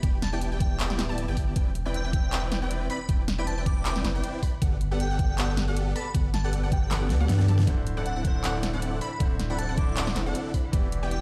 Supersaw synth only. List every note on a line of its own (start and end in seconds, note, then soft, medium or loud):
0.03 0.18 B3 medium
0.03 0.18 E4 medium
0.03 0.18 G4 medium
0.03 0.18 D5 medium
0.03 0.18 G5 medium
0.33 0.49 B3 loud
0.33 0.49 E4 medium
0.33 0.49 G4 medium
0.33 0.49 D5 medium
0.33 0.49 G5 loud
0.52 0.78 B3 medium
0.52 0.78 E4 medium
0.52 0.78 G4 medium
0.52 0.78 D5 medium
0.52 0.78 G5 medium
0.80 1.07 B3 medium
0.80 1.07 E4 medium
0.80 1.07 G4 medium
0.80 1.07 D5 medium
0.80 1.07 G5 loud
1.09 1.26 B3 medium
1.09 1.26 E4 medium
1.09 1.26 G4 medium
1.09 1.26 D5 medium
1.09 1.26 A5 loud
1.28 1.54 B3 loud
1.28 1.54 E4 medium
1.28 1.54 G4 medium
1.28 1.54 D5 medium
1.28 1.54 G5 loud
1.56 1.71 C4 medium
1.56 1.71 E4 medium
1.56 1.71 B4 medium
1.56 1.71 D5 medium
1.56 1.71 G5 medium
1.86 2.02 C4 loud
1.86 2.02 E4 medium
1.86 2.02 B4 medium
1.86 2.02 D5 medium
1.86 2.02 G5 loud
2.05 2.30 C4 medium
2.05 2.30 E4 medium
2.05 2.30 B4 medium
2.05 2.30 D5 medium
2.05 2.30 G5 medium
2.32 2.60 C4 loud
2.32 2.59 E4 medium
2.32 2.60 B4 medium
2.32 2.60 D5 medium
2.32 2.60 G5 loud
2.62 2.88 C4 medium
2.62 2.88 E4 medium
2.62 2.88 B4 medium
2.62 2.88 D5 medium
2.62 2.88 G5 loud
2.90 3.00 C4 medium
2.90 3.00 E4 medium
2.90 3.00 B4 medium
2.90 3.00 D5 medium
2.90 3.00 B5 medium
3.09 3.24 C4 medium
3.09 3.24 E4 medium
3.09 3.24 B4 medium
3.09 3.24 D5 medium
3.09 3.24 G5 medium
3.38 3.55 C4 medium
3.38 3.55 E4 medium
3.38 3.55 B4 medium
3.38 3.55 D5 medium
3.38 3.55 G5 loud
3.58 3.83 C4 medium
3.58 3.83 E4 medium
3.58 3.83 B4 medium
3.58 3.83 D5 medium
3.58 3.83 G5 loud
3.85 4.12 C4 medium
3.85 4.12 E4 medium
3.85 4.12 B4 medium
3.85 4.12 D5 medium
3.85 4.12 G5 loud
4.15 4.41 C4 medium
4.15 4.41 E4 medium
4.15 4.41 B4 medium
4.15 4.41 D5 medium
4.15 4.41 G5 loud
4.43 4.52 C4 medium
4.43 4.52 E4 medium
4.43 4.52 B4 medium
4.43 4.52 D5 medium
4.43 4.52 B5 medium
4.62 4.76 B3 medium
4.62 4.77 G4 medium
4.62 4.76 A4 medium
4.62 4.77 D5 medium
4.62 4.76 F#5 medium
4.91 5.08 B3 medium
4.91 5.08 G4 medium
4.91 5.08 A4 medium
4.91 5.08 D5 medium
4.91 5.08 F#5 loud
5.10 5.36 B3 medium
5.10 5.36 G4 medium
5.10 5.36 A4 medium
5.10 5.36 D5 medium
5.10 5.36 F#5 medium
5.38 5.65 B3 medium
5.38 5.65 G4 medium
5.38 5.65 A4 medium
5.38 5.65 D5 medium
5.38 5.65 F#5 loud
5.68 5.93 B3 medium
5.68 5.93 G4 medium
5.68 5.93 A4 medium
5.68 5.93 D5 medium
5.68 5.93 F#5 loud
5.95 6.05 B3 medium
5.95 6.05 G4 medium
5.95 6.05 A4 medium
5.95 6.05 D5 medium
5.95 6.05 A5 medium
6.15 6.29 B3 medium
6.15 6.29 G4 medium
6.15 6.29 A4 medium
6.15 6.29 D5 medium
6.15 6.29 F#5 medium
6.44 6.61 B3 medium
6.44 6.61 G4 medium
6.44 6.61 A4 medium
6.44 6.61 D5 medium
6.44 6.61 F#5 loud
6.63 6.89 B3 medium
6.63 6.89 G4 medium
6.63 6.89 A4 medium
6.63 6.89 D5 medium
6.63 6.89 F#5 medium
6.91 7.18 B3 loud
6.91 7.18 G4 medium
6.91 7.18 A4 medium
6.91 7.18 D5 medium
6.91 7.18 F#5 loud
7.21 7.46 B3 medium
7.21 7.46 G4 medium
7.21 7.46 A4 medium
7.21 7.46 D5 medium
7.21 7.46 F#5 loud
7.48 7.58 B3 medium
7.48 7.58 G4 medium
7.48 7.58 A4 medium
7.48 7.58 D5 medium
7.48 7.58 A5 medium
7.67 7.82 C4 medium
7.67 7.82 E4 medium
7.67 7.82 A4 medium
7.67 7.82 D5 medium
7.67 7.82 F#5 medium
7.97 8.14 C4 medium
7.97 8.14 E4 medium
7.97 8.14 A4 medium
7.97 8.14 D5 medium
7.97 8.14 F#5 loud
8.16 8.42 C4 medium
8.16 8.42 E4 medium
8.16 8.42 A4 medium
8.16 8.42 D5 medium
8.16 8.42 F#5 medium
8.44 8.71 C4 medium
8.44 8.71 E4 medium
8.44 8.71 A4 medium
8.44 8.71 D5 medium
8.44 8.71 F#5 loud
8.73 8.99 C4 medium
8.73 8.99 E4 medium
8.73 8.99 A4 medium
8.73 8.99 D5 medium
8.73 8.99 F#5 loud
9.01 9.11 C4 medium
9.01 9.11 E4 medium
9.01 9.11 A4 medium
9.01 9.11 D5 medium
9.01 9.11 B5 medium
9.20 9.35 C4 medium
9.20 9.35 E4 medium
9.20 9.35 A4 medium
9.20 9.35 D5 medium
9.20 9.35 F#5 medium
9.50 9.66 C4 medium
9.50 9.66 E4 medium
9.50 9.66 A4 medium
9.50 9.66 D5 medium
9.50 9.66 F#5 loud
9.69 9.95 C4 medium
9.69 9.95 E4 medium
9.69 9.95 A4 medium
9.69 9.95 D5 medium
9.69 9.95 F#5 loud
9.97 10.24 C4 loud
9.97 10.24 E4 medium
9.97 10.24 A4 medium
9.97 10.24 D5 medium
9.97 10.24 F#5 loud
10.26 10.52 C4 medium
10.26 10.52 E4 medium
10.26 10.52 A4 medium
10.26 10.52 D5 medium
10.26 10.52 F#5 loud
10.54 10.64 C4 medium
10.54 10.64 E4 medium
10.54 10.64 A4 medium
10.54 10.64 D5 medium
10.54 10.64 B5 medium
10.73 10.88 B3 medium
10.73 10.88 E4 medium
10.73 10.88 G4 medium
10.73 10.88 D5 medium
10.73 10.88 G5 medium
11.03 11.19 B3 loud
11.03 11.19 E4 medium
11.03 11.19 G4 medium
11.03 11.19 D5 medium
11.03 11.19 G5 loud